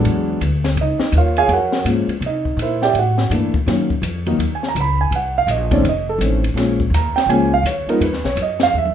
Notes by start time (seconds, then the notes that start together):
Already playing: F#3 G#3 B3 D4
0.05 E2, ride
0.41 D2, hi-hat pedal, ride
0.64 snare, ride
0.76 C#2, ride
0.81 D#4 D#5
1.00 muted upright bass stroke, snare
1.12 D#2, hi-hat pedal, ride
1.17 F4 A#4 C#5 F5
1.37 G#4 C#5 F5 G#5, ride
1.48 F2, ride
1.53 F#4 A#4 C#5 F#5
1.72 snare
1.85 G#2 F3 G#3 A#3 C#4, hi-hat pedal, ride
2.08 muted upright bass stroke, ride
2.21 C3, ride
2.26 D#4 D#5
2.45 kick
2.57 A#2, hi-hat pedal, ride
2.62 E4 A#4 C5 E5
2.82 G4 D5 E5 G5, snare
2.94 A2, ride
2.99 F#4 F#5
3.18 snare
3.30 G2 E3 A3 A#3 D4, hi-hat pedal, ride
3.54 muted upright bass stroke, kick
3.66 F#2 D#3 F#3 A#3 C#4, snare, ride
3.90 kick
4.02 F2, hi-hat pedal, ride
4.26 D#3 F#3 A#3 D#4, ride
4.38 D#2, ride
4.55 G#5
4.63 snare
4.69 A#5
4.75 C#2, hi-hat pedal, ride
4.81 B5
5.01 G#5
5.11 C2, ride
5.16 F#5
5.38 F5
5.47 A#1 D#5, hi-hat pedal, ride
5.71 D#3 A3 C4 C#4 D5, kick, ride
5.84 F1, ride
5.89 D#5
6.09 A4
6.18 A1 D#3 A3 C4 C#4, hi-hat pedal, ride
6.44 ride
6.54 A#1 F3 G#3 A#3 C#4, snare, ride
6.80 kick
6.90 D#2
6.94 A#5, hi-hat pedal, ride
7.13 G5, muted upright bass stroke
7.18 snare, ride
7.26 C#2 F3 G#3 A#3 C#4 G#5, ride
7.54 F5
7.63 D#2 C#5, hi-hat pedal, ride
7.86 F3 G#3 B3 D#4 A#4, muted upright bass stroke, ride
8.00 F2 B4, ride
8.13 D#2, snare
8.24 B1 C#5, snare
8.36 F#2, hi-hat pedal, ride
8.42 D#5
8.60 F5, snare, ride
8.73 E2, high tom
8.78 E5
8.85 high tom